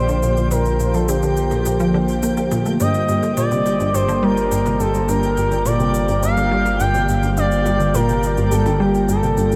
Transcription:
Already playing: A#1 D3 F3 A#3 F4 G4 C5 G5
0.09 D3, shaker
0.23 A#2, shaker
0.37 A#2, shaker
0.51 A#2 A#4, percussion blips, shaker
0.66 shaker
0.80 A#2, shaker
0.94 F3 A4, shaker
1.08 D3 G4, shaker
1.23 D3, shaker
1.37 shaker
1.51 A#2, percussion blips, shaker
1.65 A#2, shaker
1.80 F3, shaker
1.94 D3
2.08 shaker
2.23 A#3, shaker
2.37 A#3, shaker
2.51 A#2, percussion blips, shaker
2.66 A3, shaker
2.80 G1 G2 G3 D#5, shaker
2.94 shaker
3.09 G2, shaker
3.23 D3, shaker
3.37 A#2 D5, shaker
3.51 C3, shaker
3.66 percussion blips, shaker
3.80 G2, shaker
3.94 G2 C5, shaker
4.08 D3, shaker
4.23 G3 A#4
4.37 shaker
4.51 G2, shaker
4.66 C3, percussion blips, shaker
4.80 G2 A4, shaker
4.94 G2, shaker
5.09 G2 A#4, shaker
5.23 shaker
5.37 G2, shaker
5.51 D3, shaker
5.66 A#2 D5, percussion blips, shaker
5.80 C3, shaker
5.94 shaker
6.08 G2, shaker
6.23 G2 F5, shaker
6.37 D3, shaker
6.51 G3
6.66 percussion blips, shaker
6.80 G2 G5, shaker
6.94 C3, shaker
7.09 G2, shaker
7.23 G2, shaker
7.37 G2 D5, shaker
7.52 shaker
7.66 G2, percussion blips, shaker
7.80 D3, shaker
7.94 A#2 A#4, shaker
8.09 C3, shaker
8.23 shaker
8.37 G2, shaker
8.51 G2 A4, shaker
8.66 D3, percussion blips, shaker
8.80 G3 G4
8.95 shaker
9.09 G2 A4, shaker
9.23 C3, shaker
9.37 G2, shaker
9.51 G2, shaker

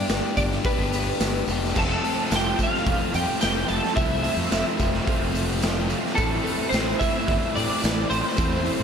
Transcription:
Already playing: D4 D5
0.09 G1 B3 D4 G4, snare, open hi-hat, tambourine
0.35 G1 B3 D4 G4 D5, kick, open hi-hat, tambourine
0.52 snare
0.64 B3 D4 G4 B4, kick, open hi-hat, tambourine
0.78 G1
0.92 B3 D4 G4, open hi-hat, tambourine
1.20 G1 B3 D4 G4, snare, open hi-hat, tambourine
1.47 F1 B3 D4 G4, open hi-hat, tambourine
1.64 snare
1.74 F1 F2 C3 F3 A3 C4 F4, kick, crash, tambourine
1.79 A4 A5
2.02 F2 C3 F3 A3 C4 F4, open hi-hat, tambourine
2.30 F1 F2 C3 F3 A3 C4 F4, snare, open hi-hat, tambourine
2.35 G4 G5
2.58 F2 C3 F3 A3 C4 F4, kick, open hi-hat, tambourine
2.62 F4 F5
2.74 snare
2.85 E1 F2 C3 F3 A3 C4 F4, kick, open hi-hat
3.12 F2 C3 F3 A3 C4 F4 G5, open hi-hat, tambourine
3.18 G4
3.40 F1 F2 C3 F3 A3 C4 F4 G4 G5, snare, open hi-hat, tambourine
3.67 F1 F2 C3 F3 A3 C4 F4 A5, open hi-hat, tambourine
3.71 A4
3.84 snare
3.94 C2 F2 C3 F3 A3 C4 F4 E5, kick, open hi-hat, tambourine
3.99 E4
4.23 F2 C3 F3 A3 C4 E4 F4 E5, open hi-hat, tambourine
4.37 F2
4.50 F1 F2 C3 F3 A3 C4 F4, snare, open hi-hat, tambourine
4.78 F1 F2 C3 F3 A3 C4 F4, kick, open hi-hat, tambourine
4.94 snare
5.05 F2 C3 F3 A3 C4 F4, kick, open hi-hat
5.20 F1
5.32 F2 C3 F3 A3 C4 F4, open hi-hat, tambourine
5.60 F2 C3 F3 A3 C4 F4, snare, open hi-hat, tambourine
5.88 F2 C3 F3 A3 C4 F4, open hi-hat, tambourine
6.05 snare
6.15 A1 A2 E3 A3 C4 E4 A4, kick, open hi-hat, tambourine
6.43 A2 E3 A3 C4 E4, open hi-hat, tambourine
6.69 A1 A2 E3 A3 C4 E4 C5, tambourine
6.74 snare, open hi-hat
6.99 A2 E3 A3 C4 E4 E5, kick, open hi-hat, tambourine
7.26 G1 A2 E3 A3 C4 E4, kick, open hi-hat
7.55 A2 E3 A3 C4 D4 E4 D5, open hi-hat, tambourine
7.81 A1 A2 E3 A3 C4 E4, open hi-hat, tambourine
7.85 snare
8.10 A1 A2 E3 A3 C4 E4 C5, open hi-hat, tambourine
8.27 snare
8.36 E2 A2 E3 A3 C4 E4, kick, open hi-hat, tambourine
8.62 A2 E3 A3 C4 E4, open hi-hat, tambourine
8.80 A2

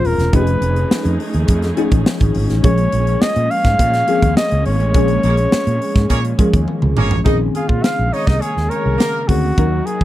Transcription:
Already playing: C#3 F3 G#3 A#3 C4 C#4 F4 G#4
0.04 D#1 A#4, open hi-hat
0.18 E1, snare, closed hi-hat
0.33 F1 F3 A3 C#4 D#4 G4 G#4 B4, kick, closed hi-hat
0.41 G#4
0.47 closed hi-hat
0.61 F1, closed hi-hat
0.76 closed hi-hat
0.91 muted fretless electric bass stroke, snare
1.05 F2, closed hi-hat
1.20 open hi-hat
1.34 D#2, closed hi-hat
1.48 F2, kick, closed hi-hat
1.62 snare, closed hi-hat
1.77 F3 A3 C#4 D#4 G#4, closed hi-hat
1.91 A1, kick, closed hi-hat
2.06 snare
2.20 G#1, kick, closed hi-hat
2.34 G#1, open hi-hat
2.49 A1, snare, closed hi-hat
2.63 A#1 F3 G#3 A#3 C#4 G#4 C#5, kick, closed hi-hat
2.78 closed hi-hat
2.92 A#1, closed hi-hat
3.07 closed hi-hat
3.22 D#5, snare
3.36 A#2, closed hi-hat
3.51 F5, open hi-hat
3.64 G#2, kick, snare, closed hi-hat
3.79 A#2, kick, closed hi-hat
3.94 snare, closed hi-hat
4.07 F3 G#3 A#3 C4 G#4, closed hi-hat
4.15 C#4
4.22 D#2, kick, closed hi-hat
4.37 D#5, snare
4.51 C#2, closed hi-hat
4.66 G#1 C#5, open hi-hat
4.80 A1, closed hi-hat
4.94 A#1 F3 G#3 A#3 C#4 G#4, kick, closed hi-hat
5.08 closed hi-hat
5.23 A#1 A#3 C#4 G#4 C#5, closed hi-hat
5.37 closed hi-hat
5.52 muted fretless electric bass stroke, snare
5.67 A#2, closed hi-hat
5.82 open hi-hat
5.96 G#2, kick, snare, closed hi-hat
6.10 A#2 A#3 C#4 G#4 C#5, kick, closed hi-hat
6.25 closed hi-hat
6.38 F3 G#3 A#3 C#4 G#4, kick, closed hi-hat
6.54 D#2, kick, closed hi-hat
6.68 high tom
6.82 C#2, mid tom
6.97 G#1 A#3 C#4 G#4 C#5, mid tom
7.11 A1, floor tom
7.24 A#1 C#3 D#3 G#3 A#3 C4 C#4 D#4 G#4 D#5, kick, closed hi-hat
7.55 F4 G#4 F5, closed hi-hat
7.68 A#2 F4, kick
7.84 F4 F5, snare, closed hi-hat
7.99 A#1
8.13 D#4 C#5 D#5, open hi-hat
8.27 C2 D#5, kick, snare
8.41 C#4 G#4 C#5, closed hi-hat
8.57 D#2, snare
8.69 C#4 A#4 C#5, closed hi-hat
8.86 C2
8.98 A#3 A#4, snare, closed hi-hat
9.28 D2 D#3 A#3 C4 C#4 F#4 G#4, kick, open hi-hat
9.57 D#2 D#3 F#3 A#3 C#4 D#4 F#4 A#4, kick, closed hi-hat
9.86 G#4, closed hi-hat
10.01 kick

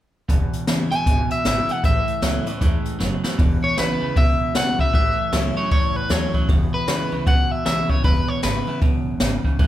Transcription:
0.29 E1 E2 B2, kick, closed hi-hat
0.53 muted upright bass stroke, closed hi-hat
0.67 G#1 E2 C#3 E3 G#3 B3 E4, snare, closed hi-hat
0.91 A1 E2 B2 B3 E4 G#5, closed hi-hat
1.06 G#1 E2 B2, kick, closed hi-hat
1.30 E5, muted upright bass stroke, closed hi-hat
1.45 G#1 E2 C#3 E3 G#3 B3 E4 E5, snare, closed hi-hat
1.68 E2 B2 B3 E4 F#5, muted upright bass stroke, closed hi-hat
1.84 A1 A2 E3 E5, kick, closed hi-hat
2.08 muted upright bass stroke, closed hi-hat
2.22 C#2 A2 E3 F#3 A3 C#4 E4, snare, closed hi-hat
2.46 A2 E3 C#4 E4, closed hi-hat
2.61 E2 A2 E3 G#3, kick, closed hi-hat
2.85 muted upright bass stroke, closed hi-hat
2.99 F#1 F#2 A2 F#3, snare
3.24 A2 E3, muted upright bass stroke, snare
3.38 E1 E2 B2, kick, open hi-hat
3.63 C#5, muted upright bass stroke
3.77 B1 E2 C#3 E3 G#3 B3 E4 B4, snare, open hi-hat
4.01 C#2 E2 C#3
4.16 C#2 E2 B2 E5, kick, open hi-hat
4.40 muted upright bass stroke
4.55 B1 E2 C#3 E3 G#3 B3 E4 F#5, snare, open hi-hat
4.79 B1 E2 C#3 B3 E4 E5, kick
4.93 A1 A2 E3 E5, kick, open hi-hat
5.18 muted upright bass stroke
5.32 C#2 A2 E3 F#3 A3 C#4 E4, snare
5.56 A2 F#3 C#4 E4 C#5, muted upright bass stroke
5.71 F#1 E2 A2 E3 C#5, kick, open hi-hat
5.95 A1 B4
6.09 D#2 A2 E3 F#3 A3 C#4 E4 C#5, snare
6.34 A2 F#3 C#4 E4, muted upright bass stroke, kick
6.49 E1 E2 B2, kick, open hi-hat
6.73 B4, muted upright bass stroke
6.88 B1 E2 C#3 E3 G#3 B3 E4, snare, open hi-hat
7.12 C#2 E2 C#3 B3 E4
7.26 C#2 E2 B2 F#5, kick, open hi-hat
7.51 E5
7.65 B1 E2 C#3 E3 G#3 B3 E4 E5, snare, open hi-hat
7.89 B1 E2 C#3 B3 E4 C#5, kick
8.04 E1 E2 B2 B4, kick, open hi-hat
8.28 C#5, muted upright bass stroke
8.42 G#1 E2 C#3 E3 G#3 B3 E4 B4, snare, open hi-hat
8.67 E2 C#3 B3 E4
8.82 C#2 E2 F#2 B2, kick, open hi-hat
9.06 E1
9.20 G#1 E2 G#2 C#3, snare, open hi-hat
9.44 E2 C#3, muted upright bass stroke, kick
9.59 A1 A2 E3, kick, open hi-hat

